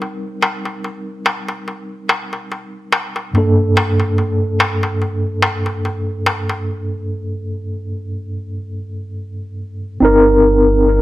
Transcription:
0.00 3.29 G3 medium
0.00 3.30 C4 medium
0.00 3.31 D#4 medium
0.00 3.32 A#4 medium
0.00 darbuka tek soft
0.42 darbuka tek medium
0.65 darbuka tek soft
0.84 darbuka tek soft
1.26 darbuka tek medium
1.48 darbuka tek soft
1.68 darbuka tek soft
2.09 darbuka tek medium
2.33 darbuka tek soft
2.52 darbuka tek soft
2.92 darbuka tek medium
3.16 darbuka tek medium
3.34 9.96 G2 medium
3.34 9.97 A#3 medium
3.34 9.98 D4 medium
3.34 darbuka tek soft
3.38 9.98 A4 medium
3.77 darbuka tek medium
4.00 darbuka tek soft
4.18 darbuka tek soft
4.60 darbuka tek medium
4.83 darbuka tek soft
5.02 darbuka tek soft
5.42 darbuka tek medium
5.66 darbuka tek soft
5.85 darbuka tek soft
6.26 darbuka tek medium
6.49 darbuka tek soft
10.00 11.02 G1 medium
10.00 11.02 C4 medium
10.00 11.02 D#4 medium
10.05 11.02 A#4 loud

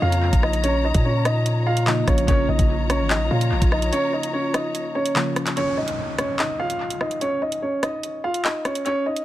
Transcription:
0.00 0.32 F2 loud
0.00 1.81 C#3 medium
0.00 1.82 F3 medium
0.00 1.83 A#3 medium
0.00 1.84 F4 medium
0.00 2.24 F4 medium
0.00 0.41 F4 medium
0.00 2.24 C#5 medium
0.00 0.41 F5 loud
0.00 2.25 A#5 medium
0.12 closed hi-hat medium
0.33 0.92 A#1 loud
0.33 kick loud
0.33 closed hi-hat medium
0.43 0.62 D#4 medium
0.43 0.62 D#5 medium
0.43 cross-stick medium
0.53 closed hi-hat medium
0.64 0.83 C#4 medium
0.64 0.82 C#5 medium
0.64 closed hi-hat medium
0.84 1.03 D#4 medium
0.84 1.03 D#5 medium
0.94 2.04 A#2 loud
0.94 kick loud
0.94 closed hi-hat medium
1.05 1.24 C#4 medium
1.05 1.23 C#5 medium
1.25 1.64 D#4 medium
1.25 1.64 D#5 medium
1.25 cross-stick loud
1.25 closed hi-hat medium
1.46 closed hi-hat medium
1.67 1.86 F4 medium
1.67 1.85 F5 loud
1.77 closed hi-hat medium
1.86 2.23 C#3 medium
1.86 2.26 F3 soft
1.86 2.28 A#3 soft
1.86 2.06 D#4 medium
1.86 2.29 F4 medium
1.86 2.06 D#5 medium
1.86 clap loud
2.07 2.27 A#1 loud
2.07 2.27 C#4 medium
2.07 2.26 C#5 medium
2.07 kick medium
2.07 cross-stick medium
2.07 closed hi-hat medium
2.18 closed hi-hat medium
2.25 2.48 A#1 loud
2.25 5.10 C#3 medium
2.25 5.11 F3 medium
2.25 5.54 F4 medium
2.25 5.54 C#5 medium
2.25 2.47 C#5 loud
2.25 5.54 A#5 medium
2.25 kick loud
2.25 closed hi-hat medium
2.29 5.12 A#3 medium
2.29 2.47 C#4 medium
2.29 5.13 F4 medium
2.49 2.59 A#1 loud
2.49 2.88 D#4 medium
2.49 2.87 D#5 medium
2.59 3.02 A#1 loud
2.59 kick loud
2.59 closed hi-hat medium
2.90 3.09 C#4 medium
2.90 3.08 C#5 medium
2.90 cross-stick loud
2.90 closed hi-hat medium
3.00 3.17 G#1 loud
3.10 3.29 D#4 medium
3.10 3.29 D#5 medium
3.10 clap loud
3.15 3.30 A#1 loud
3.31 3.53 A#2 loud
3.31 3.70 F4 medium
3.31 3.70 F5 medium
3.41 closed hi-hat medium
3.51 3.61 G#1 loud
3.62 3.91 A#1 loud
3.62 kick loud
3.62 closed hi-hat medium
3.72 3.91 D#4 medium
3.72 3.91 D#5 medium
3.72 cross-stick medium
3.82 closed hi-hat medium
3.93 4.12 C#4 medium
3.93 4.11 C#5 loud
3.93 closed hi-hat medium
4.13 4.32 D#4 medium
4.13 4.32 D#5 medium
4.23 closed hi-hat medium
4.34 4.53 C#4 medium
4.34 4.52 C#5 medium
4.54 4.93 D#4 medium
4.54 4.93 D#5 medium
4.54 cross-stick loud
4.54 closed hi-hat medium
4.75 closed hi-hat medium
4.95 5.54 C#4 medium
4.95 5.53 C#5 medium
5.06 closed hi-hat medium
5.15 5.56 C#3 medium
5.15 5.57 F3 medium
5.15 5.57 A#3 medium
5.15 5.58 F4 medium
5.15 clap loud
5.36 cross-stick medium
5.36 closed hi-hat medium
5.46 clap medium
5.46 closed hi-hat medium
5.57 5.76 C#4 medium
5.57 5.75 C#5 loud
5.57 closed hi-hat medium
5.57 downlifter medium
5.78 6.16 D#4 medium
5.88 closed hi-hat medium
6.18 6.38 C#4 medium
6.18 6.37 C#5 medium
6.18 cross-stick loud
6.18 closed hi-hat medium
6.39 6.58 D#4 medium
6.39 6.58 D#5 medium
6.39 clap loud
6.59 6.99 F4 medium
6.59 6.98 F5 loud
6.70 closed hi-hat medium
6.90 closed hi-hat medium
7.01 7.20 D#4 medium
7.01 7.19 D#5 medium
7.01 cross-stick medium
7.11 closed hi-hat medium
7.21 7.40 C#4 medium
7.21 7.40 C#5 medium
7.21 closed hi-hat medium
7.42 7.61 D#4 medium
7.42 7.60 D#5 medium
7.52 closed hi-hat medium
7.62 7.81 C#4 medium
7.62 7.81 C#5 medium
7.83 8.22 D#4 medium
7.83 8.21 D#5 medium
7.83 cross-stick loud
7.83 closed hi-hat medium
8.03 closed hi-hat medium
8.24 8.43 F4 medium
8.24 8.43 F5 medium
8.34 closed hi-hat medium
8.45 8.64 D#4 medium
8.45 8.63 D#5 medium
8.45 clap loud
8.65 8.84 C#4 medium
8.65 8.84 C#5 medium
8.65 cross-stick medium
8.65 closed hi-hat medium
8.75 closed hi-hat medium
8.86 9.05 C#4 medium
8.86 9.04 C#5 loud
8.86 closed hi-hat medium
9.06 9.25 D#4 medium
9.06 9.25 D#5 medium
9.16 closed hi-hat medium

